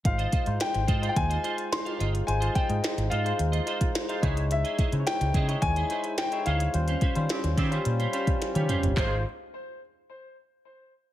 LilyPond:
<<
  \new Staff \with { instrumentName = "Grand piano" } { \time 4/4 \key aes \major \tempo 4 = 108 f''4 g''8.~ g''32 g''32 aes''4 c'''4 | aes''8 g''4 f''2 r8 | fes''4 g''4 aes''4 g''8 f''8~ | f''2. r4 |
c''8 r2. r8 | }
  \new Staff \with { instrumentName = "Clean electric guitar" } { \time 4/4 \key aes \major r16 <f' c'' ees''>16 <f' c'' ees''>16 r8. <f' c'' ees''>16 <f' c'' ees''>16 r16 <f' c'' ees''>16 <f' c'' ees''>8 r16 <f' c'' f''>16 <f' c'' ees''>8 | r16 <f' c'' ees''>16 <f' c'' ees''>16 r8. <f' c'' ees''>16 <f' c'' ees''>16 r16 <f' c'' ees''>16 <f' c'' ees''>8 r16 <f' c'' f''>16 <fes' aes' ees''>8 | r16 <fes' aes' ees''>16 <fes' aes' ees''>16 r8. <fes' aes' ees''>16 <fes' aes' ees''>16 r16 <fes' aes' ees''>16 <fes' aes' ees''>8 r16 <fes' aes' fes''>16 <fes' aes' ees''>8 | r16 <des' g' c''>16 <des' g' c''>16 r8. <des' g' c''>16 <des' g' c''>16 r16 <des' g' c''>16 <des' g' c''>8 r16 <des' g' des''>16 <des' g' c''>8 |
<f' aes' c''>16 r2. r8. | }
  \new Staff \with { instrumentName = "Tine electric piano" } { \time 4/4 \key aes \major <aes ees' f' c''>8 r16 <aes ees' f' c''>8. r16 <aes ees' f' c''>8 r16 <aes ees' f' c''>8 r16 <aes ees' f' g'>8 r16 | <aes ees' f' c''>8 r16 <aes ees' f' ees''>8. r16 <aes ees' f' c''>8 r16 <aes ees' f' c''>8 r16 <aes ees' f' c''>16 <aes ees' fes' des''>8~ | <aes ees' fes' des''>8 r16 <aes ees' fes' c'' des''>8. r16 <aes ees' fes' des''>8 r16 <aes ees' fes' c''>8 r16 <aes ees' fes' des''>8 r16 | <g des' f' c''>8 r16 <g des' f' c''>8. r16 <g des' f' c''>8 r16 <g des' f' c''>8 r16 <g des' f' g'>8 r16 |
<aes ees' f' c''>8 r2. r8 | }
  \new Staff \with { instrumentName = "Horn section" } { \clef bass \time 4/4 \key aes \major r1 | r1 | r1 | r4 <des g c' g'>16 r16 <des g c' g'>8 r2 |
<c f aes f'>8 r2. r8 | }
  \new Staff \with { instrumentName = "Fretless electric bass" } { \clef bass \time 4/4 \key aes \major aes,,8 r16 aes,16 r16 aes,,16 aes,8 ees,8 r4 g,,8 | aes,,8 r16 aes,16 r16 aes,,16 aes,8 ees,8 r4 des,8~ | des,8 r16 des16 r16 des,16 des8 ees,8 r4 d,8 | ees,8 r16 ees16 r16 ees,16 ees8 bes,8 r8. ees16 r16 g,,16 |
aes,,8 r2. r8 | }
  \new DrumStaff \with { instrumentName = "Drums" } \drummode { \time 4/4 <hh bd>16 hh16 <hh bd>16 hh16 <hh sn>16 <hh sn>16 <hh bd>16 hh16 <hh bd>16 hh16 hh16 hh16 <hh sn>16 hh16 hh16 hh16 | hh16 hh16 <hh bd>16 hh16 <hh sn>16 <hh sn>16 hh16 hh16 hh16 hh16 hh16 <hh bd>16 <hh sn>16 hh16 <hh bd>16 hh16 | hh16 hh16 <hh bd>16 hh16 <hh sn>16 <hh sn>16 <hh bd>16 hh16 <hh bd>16 hh16 hh16 hh16 <hh sn>16 hh16 hh16 hh16 | hh16 hh16 <hh bd>16 hh16 <hh sn>16 <hh sn>16 <hh bd>16 hh16 hh16 hh16 hh16 <hh bd>16 <hh sn>16 <hh tommh>16 <hh toml>16 <hh tomfh>16 |
<hc bd>4 r4 r4 r4 | }
>>